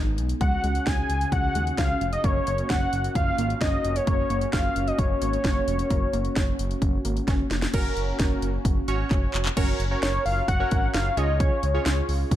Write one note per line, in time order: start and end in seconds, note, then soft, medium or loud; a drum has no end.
0.00 0.19 G#1 medium
0.00 0.37 G#3 medium
0.00 0.37 B3 medium
0.00 0.11 D#4 medium
0.00 0.37 D#4 medium
0.18 0.34 B1 medium
0.18 closed hi-hat medium
0.29 closed hi-hat medium
0.41 0.57 C#2 loud
0.41 2.22 C#3 medium
0.41 0.57 G#3 medium
0.41 7.70 C#4 medium
0.41 7.70 F#4 medium
0.41 2.22 G#4 medium
0.41 0.88 F#5 loud
0.41 kick loud
0.41 closed hi-hat medium
0.64 0.80 C#2 loud
0.64 0.79 G#3 medium
0.64 closed hi-hat medium
0.75 closed hi-hat soft
0.87 1.03 C#2 medium
0.87 1.02 C#4 medium
0.87 1.32 G#5 loud
0.87 kick loud
0.87 snare loud
0.87 closed hi-hat medium
1.09 1.26 C#2 loud
1.09 closed hi-hat medium
1.21 closed hi-hat soft
1.32 1.48 C#2 loud
1.32 1.75 F#5 loud
1.32 kick loud
1.32 closed hi-hat medium
1.55 1.71 D#2 medium
1.55 1.71 G#3 medium
1.55 closed hi-hat medium
1.67 closed hi-hat soft
1.78 1.94 C#2 loud
1.78 1.94 C#4 medium
1.78 2.10 F5 loud
1.78 kick loud
1.78 snare loud
1.78 closed hi-hat medium
2.01 2.17 F1 medium
2.01 closed hi-hat medium
2.13 2.26 D#5 medium
2.13 closed hi-hat medium
2.24 2.40 F#1 loud
2.24 2.40 A#3 medium
2.24 7.70 A#3 medium
2.24 2.69 C#5 loud
2.24 kick loud
2.24 closed hi-hat medium
2.47 2.63 F#1 loud
2.47 2.63 A#3 medium
2.47 closed hi-hat medium
2.58 closed hi-hat soft
2.70 2.86 F#1 loud
2.70 2.86 C#4 medium
2.70 3.13 F#5 loud
2.70 kick loud
2.70 snare loud
2.70 closed hi-hat medium
2.93 3.09 F#1 loud
2.93 closed hi-hat medium
3.04 closed hi-hat soft
3.15 3.31 F#1 loud
3.15 3.58 F5 loud
3.15 kick loud
3.15 closed hi-hat medium
3.38 3.55 G#1 medium
3.38 3.54 A#3 medium
3.38 closed hi-hat medium
3.50 closed hi-hat soft
3.61 3.77 F#1 loud
3.61 3.77 C#4 medium
3.61 3.97 D#5 loud
3.61 kick loud
3.61 snare loud
3.61 closed hi-hat medium
3.84 4.00 F1 medium
3.84 closed hi-hat medium
3.96 4.06 C#5 medium
3.96 closed hi-hat medium
4.07 4.23 F#1 loud
4.07 4.23 A#3 medium
4.07 4.50 C#5 loud
4.07 kick loud
4.07 closed hi-hat medium
4.30 4.46 F#1 loud
4.30 4.46 A#3 medium
4.30 closed hi-hat medium
4.41 closed hi-hat soft
4.53 4.69 F#1 loud
4.53 4.69 C#4 medium
4.53 4.89 F5 loud
4.53 kick loud
4.53 snare loud
4.53 closed hi-hat medium
4.76 4.92 F#1 loud
4.76 closed hi-hat medium
4.87 4.98 D#5 medium
4.87 closed hi-hat soft
4.99 5.15 F#1 loud
4.99 7.24 C#5 loud
4.99 kick loud
4.99 closed hi-hat medium
5.22 5.38 G#1 medium
5.22 5.37 A#3 medium
5.22 closed hi-hat medium
5.33 closed hi-hat soft
5.44 5.61 F#1 loud
5.44 5.60 C#4 medium
5.44 kick loud
5.44 snare loud
5.44 closed hi-hat medium
5.68 5.84 F1 medium
5.68 closed hi-hat medium
5.79 closed hi-hat medium
5.90 6.07 F#1 loud
5.90 6.06 A#3 medium
5.90 kick loud
5.90 closed hi-hat medium
6.13 6.29 F#1 medium
6.13 6.29 A#3 medium
6.13 closed hi-hat medium
6.25 closed hi-hat soft
6.36 6.52 F#1 loud
6.36 6.52 C#4 medium
6.36 kick loud
6.36 snare loud
6.36 closed hi-hat medium
6.59 6.75 F#1 loud
6.59 closed hi-hat medium
6.71 closed hi-hat soft
6.82 6.98 F#1 loud
6.82 kick loud
6.82 closed hi-hat medium
7.05 7.21 G#1 medium
7.05 7.21 A#3 medium
7.05 closed hi-hat medium
7.17 closed hi-hat soft
7.28 7.44 F#1 loud
7.28 7.44 C#4 medium
7.28 kick loud
7.28 snare medium
7.28 closed hi-hat medium
7.51 7.67 F1 medium
7.51 snare medium
7.51 closed hi-hat medium
7.62 snare medium
7.62 closed hi-hat medium
7.74 7.90 F#1 loud
7.74 9.55 A#3 medium
7.74 8.50 C#4 medium
7.74 9.55 C#4 medium
7.74 8.50 F#4 medium
7.74 9.55 F#4 medium
7.74 8.50 A#4 loud
7.74 kick loud
7.74 closed hi-hat medium
7.74 crash loud
7.97 8.13 F#1 medium
7.97 closed hi-hat medium
8.19 8.36 F#1 loud
8.19 kick loud
8.19 snare loud
8.19 closed hi-hat medium
8.42 8.58 F#1 loud
8.42 closed hi-hat medium
8.65 8.81 F#1 loud
8.65 kick loud
8.65 closed hi-hat medium
8.88 9.04 G#1 medium
8.88 9.45 C#4 medium
8.88 9.45 F#4 medium
8.88 9.45 C#5 loud
8.88 closed hi-hat medium
9.11 9.27 F#1 loud
9.11 kick loud
9.11 clap medium
9.11 closed hi-hat medium
9.34 9.50 F1 loud
9.34 clap medium
9.34 closed hi-hat medium
9.45 clap medium
9.57 9.73 F#1 loud
9.57 9.85 C#4 medium
9.57 9.85 F#4 medium
9.57 9.85 A#4 medium
9.57 9.85 C#5 loud
9.57 kick loud
9.57 closed hi-hat medium
9.57 crash loud
9.80 9.96 F#1 loud
9.80 closed hi-hat medium
9.91 10.48 C#4 medium
9.91 10.48 F#4 medium
9.91 10.48 A#4 medium
9.91 10.48 C#5 medium
10.03 10.19 F#1 loud
10.03 10.24 C#5 medium
10.03 snare loud
10.03 closed hi-hat medium
10.26 10.42 F#1 loud
10.26 10.47 F5 loud
10.26 open hi-hat medium
10.48 10.64 F#1 loud
10.48 10.70 F#5 loud
10.48 kick medium
10.48 closed hi-hat medium
10.60 11.16 C#4 medium
10.60 11.17 F#4 medium
10.60 11.17 A#4 medium
10.60 11.16 C#5 medium
10.71 10.88 G#1 medium
10.71 10.92 F#5 loud
10.71 kick medium
10.71 closed hi-hat medium
10.94 11.10 F#1 loud
10.94 11.19 F5 loud
10.94 snare loud
10.94 closed hi-hat medium
11.17 11.49 C#2 loud
11.17 11.65 C#4 medium
11.17 11.65 F4 medium
11.17 11.65 G#4 medium
11.17 11.65 C#5 medium
11.17 11.39 D#5 loud
11.17 closed hi-hat medium
11.40 11.83 C#5 medium
11.40 kick loud
11.40 closed hi-hat medium
11.63 11.79 C#2 loud
11.63 closed hi-hat medium
11.74 12.32 C#4 medium
11.74 12.32 F4 medium
11.74 12.32 G#4 medium
11.74 12.32 C#5 medium
11.86 12.02 C#2 loud
11.86 snare loud
11.86 closed hi-hat medium
12.09 12.25 C#2 loud
12.09 open hi-hat medium
12.31 12.36 C#2 loud
12.31 kick medium
12.31 closed hi-hat medium